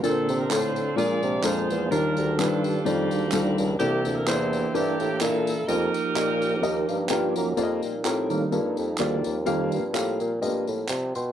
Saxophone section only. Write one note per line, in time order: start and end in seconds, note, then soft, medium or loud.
0.04 0.94 C4 medium
0.04 0.94 D4 medium
0.04 0.38 A4 medium
0.40 0.50 A#4 medium
0.49 0.94 F4 medium
0.49 0.94 A4 medium
0.49 0.97 C5 loud
0.97 1.44 F4 medium
0.97 1.44 G#4 medium
0.97 1.44 D5 loud
1.44 1.89 F4 medium
1.44 1.89 G#4 medium
1.44 1.92 C5 medium
1.91 2.37 D4 medium
1.91 2.82 G4 medium
1.91 2.35 A#4 medium
2.38 2.84 D4 medium
2.38 3.29 F4 medium
2.38 2.86 A4 loud
2.85 3.76 A#3 medium
2.85 3.76 D4 medium
2.85 3.59 G4 medium
3.79 4.70 A#3 medium
3.79 4.26 E4 medium
3.79 4.14 G4 medium
4.16 4.27 A#4 medium
4.27 4.73 E4 medium
4.27 4.73 G4 medium
4.27 4.71 C5 loud
4.74 5.64 A#3 medium
4.74 5.20 E4 medium
4.74 5.21 G4 loud
5.21 5.65 D4 medium
5.21 5.65 E4 medium
5.21 5.68 A4 medium
5.68 7.06 D#4 medium
5.68 7.06 G4 medium
5.68 7.10 A#4 medium